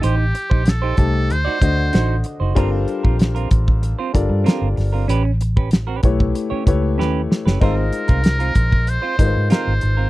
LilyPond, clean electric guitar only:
\new Staff \with { instrumentName = "Clean electric guitar" } { \time 4/4 \key a \phrygian \tempo 4 = 95 <ees' g' c''>16 r8 <ees' g' c''>16 r16 <ees' g' c''>16 r8. <ees' fis' d''>16 r8 <ees' fis' c''>16 r8 <ees' fis' c''>16 | <c' f' bes'>16 r8 <c' f' bes'>16 r16 <c' f' bes'>16 r8. <c' f' c''>16 r8 <c' f' bes'>16 r8 <c' f' bes'>16 | <cis' g' b'>16 r8 <cis' g' b'>16 r16 <cis' g' b'>16 r8. <cis' g' cis''>16 r8 <cis' g' b'>16 r8 <cis' g' b'>16 | <c' f' bes'>16 r8 <c' f' bes'>16 r16 <c' f' bes'>16 r8. <c' f' c''>16 r8 <c' f' bes'>16 r8 <c' f' bes'>16 | }